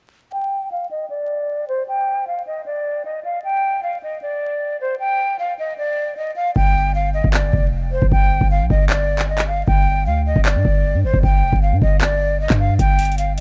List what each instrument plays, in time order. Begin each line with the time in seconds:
0.32 flute G5
0.72 flute F5
0.91 flute D#5
1.10 flute D5
1.68 flute C5
1.88 flute G5
2.27 flute F5
2.47 flute D#5
2.66 flute D5
3.05 flute D#5
3.24 flute F5
3.44 flute G5
3.83 flute F5
4.03 flute D#5
4.22 flute D5
4.81 flute C5
4.99 flute G5
5.39 flute F5
5.59 flute D#5
5.78 flute D5
6.17 flute D#5
6.36 flute F5
6.56 808-style bass G1, flute G5, kick
6.95 flute F5
7.14 flute D#5
7.24 808-style bass G1, kick
7.33 flute D5, clap
7.53 808-style bass F1, kick
7.91 flute C5
8.02 808-style bass G1, kick
8.11 808-style bass G1, flute G5, kick
8.41 808-style bass G1, kick
8.51 flute F5
8.61 808-style bass A#1
8.70 808-style bass G1, flute D#5, kick
8.89 flute D5, clap
9.19 clap
9.29 flute D#5
9.38 clap
9.48 flute F5
9.67 808-style bass G1, flute G5, kick
10.06 808-style bass D2, flute F5
10.27 flute D#5
10.36 808-style bass G1, kick
10.45 flute D5, clap
10.55 808-style bass G2
10.65 808-style bass G1, kick
10.94 808-style bass G2
11.04 808-style bass G1, flute C5
11.14 808-style bass G1, kick
11.23 808-style bass G1, flute G5, kick
11.43 808-style bass F1
11.53 808-style bass G1, kick
11.62 flute F5
11.72 808-style bass G2
11.82 808-style bass G1, flute D#5, kick
12.01 flute D5, clap
12.40 flute D#5
12.50 808-style bass G2, kick, clap
12.59 flute F5
12.79 808-style bass G1, flute G5, kick, closed hi-hat
12.99 closed hi-hat, open hi-hat
13.05 closed hi-hat
13.12 closed hi-hat
13.18 flute F5, closed hi-hat
13.37 flute D#5